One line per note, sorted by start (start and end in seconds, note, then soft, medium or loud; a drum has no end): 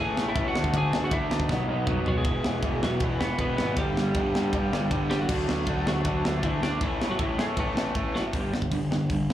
0.00 0.15 A1 loud
0.00 0.16 A2 loud
0.00 0.16 E3 loud
0.00 0.17 A3 loud
0.00 0.24 G#4 medium
0.00 0.25 G#5 loud
0.17 0.34 A1 loud
0.17 0.33 A2 medium
0.17 0.34 E3 medium
0.17 0.35 A3 loud
0.17 snare loud
0.28 0.45 E4 medium
0.28 0.47 E5 medium
0.35 0.53 A1 medium
0.35 0.53 A2 loud
0.35 0.53 E3 loud
0.35 0.53 A3 loud
0.35 kick loud
0.35 ride medium
0.46 0.72 F#4 medium
0.46 0.75 F#5 loud
0.55 0.72 D2 medium
0.55 0.71 D3 loud
0.55 0.72 A3 loud
0.55 0.73 D4 loud
0.55 snare loud
0.64 kick medium
0.73 0.91 D2 loud
0.73 0.91 D3 loud
0.73 0.92 A3 loud
0.73 0.92 D4 loud
0.73 kick loud
0.73 ride medium
0.77 1.01 G#4 medium
0.77 1.02 G#5 loud
0.92 1.10 D2 medium
0.92 1.10 D3 medium
0.92 1.11 A3 medium
0.92 1.11 D4 loud
0.92 snare loud
1.04 1.12 F#4 medium
1.04 1.13 F#5 medium
1.11 1.29 D2 loud
1.11 1.30 D3 medium
1.11 1.30 A3 loud
1.11 1.31 D4 loud
1.11 1.29 E4 medium
1.11 1.33 E5 loud
1.11 kick loud
1.11 ride medium
1.31 1.48 D2 medium
1.31 1.48 D3 medium
1.31 1.49 A3 loud
1.31 1.49 D4 medium
1.31 2.03 D#4 medium
1.31 2.07 D#5 medium
1.31 snare loud
1.40 kick loud
1.49 1.67 B1 loud
1.49 1.67 B2 medium
1.49 1.68 F#3 loud
1.49 1.68 B3 loud
1.49 kick loud
1.49 snare medium
1.68 1.86 B1 loud
1.68 1.87 B2 medium
1.68 1.87 F#3 medium
1.68 1.88 B3 loud
1.87 2.05 B1 medium
1.87 2.05 B2 loud
1.87 2.05 F#3 loud
1.87 2.06 B3 loud
1.87 kick loud
1.87 mid tom medium
2.06 2.24 B1 medium
2.06 2.24 B2 loud
2.06 2.24 F#3 medium
2.06 2.16 F#3 medium
2.06 2.24 B3 loud
2.06 2.17 F#4 medium
2.06 floor tom loud
2.17 2.79 G#3 medium
2.17 2.83 G#4 medium
2.25 2.42 E1 loud
2.25 2.44 E2 medium
2.25 2.44 B2 loud
2.25 2.44 E3 loud
2.25 kick loud
2.25 ride medium
2.43 2.60 E1 medium
2.43 2.62 E2 medium
2.43 2.63 B2 medium
2.43 2.63 E3 loud
2.43 snare loud
2.63 2.80 E1 medium
2.63 2.81 E2 medium
2.63 2.81 B2 medium
2.63 2.81 E3 loud
2.63 kick loud
2.63 ride medium
2.82 2.99 E1 medium
2.82 3.00 E2 medium
2.82 3.01 B2 medium
2.82 3.02 E3 medium
2.82 3.00 F#3 medium
2.82 3.04 F#4 medium
2.82 snare loud
3.00 3.18 E1 medium
3.00 3.20 E2 loud
3.00 3.20 B2 loud
3.00 3.20 E3 medium
3.00 3.21 E3 loud
3.00 3.22 E4 medium
3.00 kick loud
3.00 ride medium
3.19 3.37 E1 loud
3.19 3.38 E2 medium
3.19 3.39 B2 medium
3.19 3.39 E3 medium
3.19 3.39 B3 medium
3.19 3.37 B4 medium
3.19 snare loud
3.39 3.56 E1 medium
3.39 3.57 E2 medium
3.39 3.58 B2 medium
3.39 3.59 E3 medium
3.39 3.57 B3 medium
3.39 3.56 B4 medium
3.39 kick loud
3.39 ride medium
3.57 3.75 G#1 medium
3.57 3.76 E2 medium
3.57 3.77 B2 medium
3.57 3.77 E3 loud
3.57 3.78 B3 medium
3.57 3.75 B4 medium
3.57 snare loud
3.76 4.11 G1 loud
3.76 3.96 G2 loud
3.76 3.97 D3 loud
3.76 4.88 G3 medium
3.76 3.98 G3 loud
3.76 4.88 G4 medium
3.76 kick loud
3.76 ride medium
3.97 4.15 G2 medium
3.97 4.16 D3 medium
3.97 4.16 G3 loud
3.97 snare loud
4.15 4.32 G1 medium
4.15 4.35 G2 medium
4.15 4.35 D3 medium
4.15 4.35 G3 medium
4.15 kick loud
4.15 ride medium
4.33 4.51 G2 medium
4.33 4.53 G2 medium
4.33 4.53 D3 medium
4.33 4.54 G3 medium
4.33 snare loud
4.53 4.70 G1 loud
4.53 4.71 G2 loud
4.53 4.71 D3 loud
4.53 4.72 G3 loud
4.53 kick loud
4.53 ride medium
4.72 4.89 G1 medium
4.72 4.90 G2 medium
4.72 4.91 D3 medium
4.72 4.91 G3 medium
4.72 snare loud
4.91 5.25 G1 medium
4.91 5.09 G2 medium
4.91 5.10 D3 medium
4.91 5.10 G3 medium
4.91 kick loud
4.91 ride medium
5.10 5.28 G2 loud
5.10 5.28 D3 loud
5.10 5.19 G3 medium
5.10 5.29 G3 loud
5.10 5.20 G4 loud
5.10 snare loud
5.21 5.83 F#3 medium
5.21 5.87 F#4 loud
5.29 5.46 D2 loud
5.29 5.47 D3 loud
5.29 5.48 A3 loud
5.29 5.47 D4 loud
5.29 kick loud
5.29 crash loud
5.48 5.65 D2 medium
5.48 5.66 D3 loud
5.48 5.68 A3 medium
5.48 5.67 D4 loud
5.48 snare loud
5.67 5.84 D2 medium
5.67 5.85 D3 medium
5.67 5.86 A3 medium
5.67 5.86 D4 loud
5.67 kick loud
5.67 ride medium
5.86 6.04 D2 medium
5.86 6.04 D3 medium
5.86 6.40 F#3 medium
5.86 6.05 A3 medium
5.86 6.05 D4 medium
5.86 6.40 F#4 loud
5.86 snare loud
6.05 6.22 D2 loud
6.05 6.24 D3 loud
6.05 6.24 A3 loud
6.05 6.25 D4 loud
6.05 kick loud
6.05 ride medium
6.24 6.41 D2 medium
6.24 6.43 D3 medium
6.24 6.44 A3 medium
6.24 6.44 D4 medium
6.24 snare loud
6.43 6.60 D2 medium
6.43 6.62 D3 medium
6.43 6.61 E3 medium
6.43 6.63 A3 medium
6.43 6.64 D4 medium
6.43 6.63 E4 medium
6.43 kick loud
6.43 ride medium
6.61 6.79 D2 medium
6.61 6.81 D3 medium
6.61 6.81 A3 loud
6.61 6.83 D4 loud
6.61 6.81 D4 loud
6.61 6.80 D5 medium
6.61 snare loud
6.81 7.15 A1 loud
6.81 7.01 A2 medium
6.81 7.09 E3 medium
6.81 7.01 E3 loud
6.81 7.01 A3 loud
6.81 7.11 E4 medium
6.81 kick loud
6.81 ride medium
7.01 7.20 A2 medium
7.01 7.20 E3 medium
7.01 7.21 A3 loud
7.01 snare loud
7.10 7.18 F#3 medium
7.10 7.19 F#4 loud
7.18 7.36 A1 medium
7.18 7.38 A2 loud
7.18 7.37 E3 medium
7.18 7.38 E3 medium
7.18 7.39 A3 loud
7.18 7.39 E4 loud
7.18 kick loud
7.18 ride medium
7.38 7.55 A2 medium
7.38 7.57 A2 medium
7.38 7.57 E3 medium
7.38 7.43 G#3 medium
7.38 7.57 A3 medium
7.38 7.45 G#4 loud
7.38 snare loud
7.57 7.75 A1 loud
7.57 7.75 A2 loud
7.57 7.76 E3 loud
7.57 7.76 A3 loud
7.57 7.94 A3 medium
7.57 7.97 A4 medium
7.57 kick loud
7.57 ride medium
7.76 7.93 A1 medium
7.76 7.95 A2 medium
7.76 7.95 E3 medium
7.76 7.96 A3 loud
7.76 snare loud
7.95 8.30 A1 medium
7.95 8.14 A2 medium
7.95 8.15 E3 medium
7.95 8.15 A3 loud
7.95 kick loud
7.95 ride medium
8.15 8.33 A2 medium
8.15 8.33 E3 medium
8.15 8.24 F#3 medium
8.15 8.33 A3 medium
8.15 8.24 F#4 medium
8.15 snare medium
8.33 8.52 G1 loud
8.33 8.52 G2 medium
8.33 8.52 D3 medium
8.33 8.53 G3 medium
8.33 kick loud
8.33 open hi-hat medium
8.53 8.71 G1 medium
8.53 8.70 G2 medium
8.53 8.70 D3 medium
8.53 snare loud
8.62 kick medium
8.72 8.90 G1 medium
8.72 8.89 G2 medium
8.72 8.90 D3 medium
8.72 kick medium
8.72 open hi-hat medium
8.91 9.09 G1 medium
8.91 9.08 G2 medium
8.91 9.09 D3 medium
8.91 snare loud
9.10 9.28 G1 medium
9.10 9.27 G2 medium
9.10 9.28 D3 medium
9.10 kick loud
9.10 open hi-hat medium
9.30 9.33 G1 medium
9.30 9.33 G2 medium